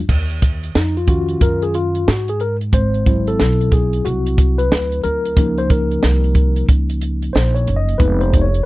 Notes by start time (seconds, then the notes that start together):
0.09 D#2, kick, crash
0.30 closed hi-hat
0.42 kick, closed hi-hat
0.63 closed hi-hat
0.75 F2 D#4, snare
0.97 F4, closed hi-hat
1.07 D#3 C#4 F4 F#4, kick, closed hi-hat
1.28 closed hi-hat
1.41 F#2 A#4, kick, closed hi-hat
1.62 G#4, closed hi-hat
1.74 F4, closed hi-hat
1.95 closed hi-hat
2.08 G#2 F#4, snare
2.28 G#4, closed hi-hat
2.40 A#4, closed hi-hat
2.61 closed hi-hat
2.73 G#1 C5, kick, closed hi-hat
2.94 closed hi-hat
3.06 F#3 C4 E4, kick, closed hi-hat
3.27 A4, closed hi-hat
3.40 B1, snare
3.61 closed hi-hat
3.72 G#4, kick, closed hi-hat
3.93 closed hi-hat
4.05 C2 F#4, closed hi-hat
4.26 closed hi-hat
4.38 kick, closed hi-hat
4.58 B4, closed hi-hat
4.72 D2, snare
4.92 closed hi-hat
5.04 D2 A#4, closed hi-hat
5.25 closed hi-hat
5.37 C#2 F3 A#3 D#4, kick, closed hi-hat
5.58 C5, closed hi-hat
5.70 A#4, kick, closed hi-hat
5.91 closed hi-hat
6.03 C2, snare
6.24 closed hi-hat
6.35 kick, closed hi-hat
6.56 closed hi-hat
6.69 C#2, kick, closed hi-hat
6.89 closed hi-hat
7.01 closed hi-hat
7.22 closed hi-hat
7.33 A#1 C5, snare
7.55 C#5, closed hi-hat
7.67 F#1, closed hi-hat
7.76 D#5
7.89 closed hi-hat
7.98 F1 G#3 B3 D#4 B4, kick, closed hi-hat
8.21 C5, closed hi-hat
8.33 kick, closed hi-hat
8.42 C#5
8.54 closed hi-hat